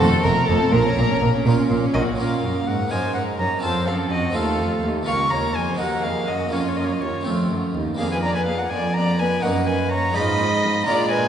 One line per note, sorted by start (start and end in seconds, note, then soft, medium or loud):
0.00 0.22 F2 medium
0.00 0.11 A3 medium
0.00 0.69 A3 medium
0.00 0.69 C4 medium
0.00 0.69 F4 medium
0.00 0.22 A4 medium
0.00 0.23 A4 loud
0.12 0.24 C4 medium
0.23 0.32 F1 medium
0.23 0.32 F2 medium
0.23 0.46 F2 medium
0.23 0.36 A3 medium
0.23 0.47 A#4 medium
0.23 0.48 A#4 medium
0.23 0.48 A#5 loud
0.37 0.48 C4 medium
0.47 0.57 F1 medium
0.47 0.56 F2 medium
0.47 0.71 F2 medium
0.47 0.60 A3 medium
0.47 0.73 A4 medium
0.47 0.72 A5 loud
0.61 0.73 C4 medium
0.72 0.81 A#1 medium
0.72 0.80 A#2 medium
0.72 0.95 A#2 medium
0.72 0.84 A#3 medium
0.72 1.46 A#4 medium
0.72 1.44 A#5 loud
0.85 0.97 C#4 medium
0.97 1.05 A#1 medium
0.97 1.05 A#2 medium
0.97 1.19 A#2 medium
0.97 1.09 A#3 medium
1.10 1.22 C#4 medium
1.21 1.29 A#1 medium
1.21 1.29 A#2 medium
1.21 1.43 A#2 medium
1.21 1.33 A#3 medium
1.34 1.46 C#4 medium
1.46 1.54 A#1 medium
1.46 1.54 A#2 medium
1.46 1.68 A#2 medium
1.46 1.58 A#3 medium
1.46 1.99 C#4 medium
1.46 1.99 F4 medium
1.59 1.71 C#4 medium
1.70 1.79 A#1 medium
1.70 1.78 A#2 medium
1.70 1.92 A#2 medium
1.70 1.82 A#3 medium
1.83 1.95 C#4 medium
1.94 2.03 A#1 medium
1.94 2.02 A#2 medium
1.94 2.16 A#2 medium
1.94 2.07 A#3 medium
1.94 2.17 F#4 medium
1.94 2.02 D#5 medium
2.08 2.20 C#4 medium
2.15 2.41 A#2 soft
2.15 2.86 A#3 soft
2.15 2.88 C#4 soft
2.15 2.87 C#4 soft
2.15 2.89 F4 soft
2.15 2.66 A#4 soft
2.15 2.68 F5 soft
2.20 2.41 A#2 soft
2.20 2.88 A#3 soft
2.43 2.67 F#2 soft
2.43 2.65 F#2 soft
2.67 2.91 G#2 soft
2.67 2.89 G#2 soft
2.67 2.75 A#4 soft
2.67 2.92 F#5 medium
2.88 2.99 F#2 soft
2.88 3.13 A#3 soft
2.88 3.60 D#4 soft
2.88 3.62 D#4 medium
2.88 3.61 A#4 soft
2.88 3.14 G#5 medium
2.92 3.14 F#2 soft
2.92 3.63 A#3 soft
2.92 3.15 C5 medium
3.14 3.23 G#2 soft
3.14 3.37 G#2 soft
3.14 3.40 A#4 medium
3.14 3.22 F#5 medium
3.39 3.47 F#2 medium
3.39 3.61 F#2 soft
3.39 3.48 C#5 medium
3.39 3.62 A#5 medium
3.59 3.87 F2 medium
3.59 3.85 C4 soft
3.59 4.31 F4 soft
3.59 4.32 A4 soft
3.59 3.86 A5 medium
3.63 3.85 F2 soft
3.63 4.35 C4 medium
3.63 4.35 F4 soft
3.63 3.87 C5 medium
3.86 4.11 F#2 medium
3.86 4.09 F#2 soft
3.86 4.12 A4 medium
3.86 3.95 F5 medium
4.10 4.34 F2 soft
4.10 4.33 F2 soft
4.10 4.35 F#4 medium
4.10 4.36 D#5 medium
4.31 4.58 D#2 medium
4.31 5.03 C4 soft
4.31 5.03 F4 soft
4.31 5.04 A4 soft
4.31 4.82 A4 medium
4.35 4.57 D#2 soft
4.35 5.06 A3 medium
4.35 5.06 F4 medium
4.35 4.83 F5 medium
4.59 4.83 F2 medium
4.59 4.81 F2 soft
4.83 5.07 D#2 medium
4.83 5.05 D#2 soft
5.03 5.73 A#3 soft
5.03 5.76 F4 soft
5.03 5.77 A#4 soft
5.03 5.32 C#6 medium
5.07 5.31 C#2 medium
5.07 5.29 C#2 soft
5.07 5.78 A#3 medium
5.07 5.78 F4 medium
5.07 5.15 F5 medium
5.30 5.53 D#2 soft
5.30 5.55 D#2 medium
5.30 5.55 C#5 medium
5.30 5.57 A#5 medium
5.55 5.79 F2 soft
5.55 5.77 F2 soft
5.55 5.79 C5 medium
5.55 5.79 G#5 medium
5.74 6.00 A#3 soft
5.74 6.49 D#4 soft
5.74 6.50 F#4 soft
5.78 6.01 D#2 soft
5.78 6.03 D#2 medium
5.78 6.51 A#3 soft
5.78 6.52 F#4 medium
5.78 6.03 A#4 medium
5.78 6.05 F#5 medium
6.03 6.28 F2 soft
6.03 6.26 F2 soft
6.03 6.28 G#4 medium
6.03 6.29 F5 medium
6.27 6.52 F#2 soft
6.27 6.50 F#2 soft
6.27 6.52 F#4 medium
6.27 6.54 D#5 medium
6.49 6.77 F2 medium
6.49 6.74 A#3 soft
6.49 7.24 A#3 soft
6.49 7.22 C#4 soft
6.49 7.24 F4 medium
6.49 7.23 F4 soft
6.53 6.75 F2 soft
6.53 7.25 F4 medium
6.53 6.62 C#5 soft
6.60 6.70 D#5 soft
6.68 6.78 C#5 medium
6.76 7.00 F#2 soft
6.76 6.99 F#2 soft
6.76 6.86 D#5 soft
6.85 6.94 C#5 soft
6.93 7.02 D#5 soft
7.01 7.09 D#2 soft
7.01 7.24 D#2 soft
7.01 7.26 C#5 medium
7.21 7.47 A3 soft
7.21 7.48 C4 soft
7.21 7.96 F4 soft
7.25 7.49 F2 soft
7.25 7.48 F2 soft
7.25 7.79 A3 soft
7.25 7.78 F4 medium
7.49 7.57 F#2 soft
7.49 7.73 F#2 soft
7.74 7.98 D#2 medium
7.74 7.97 D#2 soft
7.95 8.63 F2 medium
7.95 9.37 A#3 soft
7.95 9.38 D4 soft
7.95 9.39 G#4 soft
7.95 8.10 G#4 medium
7.99 8.60 F2 soft
7.99 8.07 A#3 medium
7.99 8.07 D4 soft
7.99 8.10 F5 medium
8.10 8.22 B4 medium
8.10 8.16 G#5 medium
8.22 8.31 A#3 soft
8.22 8.31 D4 soft
8.22 8.35 D5 medium
8.22 8.34 A#5 medium
8.34 8.47 B4 medium
8.34 8.46 G#5 medium
8.46 8.55 A#3 soft
8.46 8.55 D4 soft
8.46 8.59 G#4 medium
8.46 8.60 F5 medium
8.58 8.71 A#4 medium
8.58 8.71 F#5 medium
8.70 9.35 F2 medium
8.70 9.32 F2 soft
8.70 8.80 A#3 soft
8.70 8.80 D4 soft
8.70 8.93 D5 medium
8.70 8.95 G#5 medium
8.94 9.04 A#3 soft
8.94 9.19 D5 medium
8.94 9.20 A#5 medium
9.19 9.28 A#3 soft
9.19 9.28 D4 soft
9.19 9.43 B4 medium
9.19 9.44 G#5 medium
9.40 10.07 F#2 medium
9.40 10.11 A#3 soft
9.40 10.12 D#4 soft
9.40 10.13 F#4 soft
9.40 9.67 A#4 medium
9.40 9.68 F#5 medium
9.44 10.04 F#2 soft
9.44 9.52 A#3 medium
9.44 9.52 D#4 medium
9.67 9.75 A#3 soft
9.67 9.77 D#4 soft
9.67 9.91 B4 medium
9.67 9.90 G#5 medium
9.91 10.00 A#3 soft
9.91 10.00 D#4 medium
9.91 10.15 C#5 medium
9.91 10.17 A#5 medium
10.11 10.79 G#2 medium
10.11 10.82 G#3 soft
10.11 10.84 D#4 soft
10.11 10.85 F4 soft
10.11 10.85 B5 medium
10.15 10.76 G#2 soft
10.15 10.23 F3 soft
10.15 10.25 D#4 medium
10.15 10.88 D#5 medium
10.39 10.47 F3 medium
10.39 10.49 D#4 soft
10.63 10.71 F3 medium
10.63 10.72 D#4 soft
10.83 11.28 G#3 soft
10.83 11.28 D4 soft
10.83 11.28 F4 soft
10.83 11.11 D5 medium
10.83 11.10 A#5 medium
10.87 11.28 A#2 soft
10.87 11.28 A#2 medium
10.87 11.28 G#3 medium
10.87 11.28 D4 medium
11.10 11.28 B4 medium
11.10 11.28 G#5 medium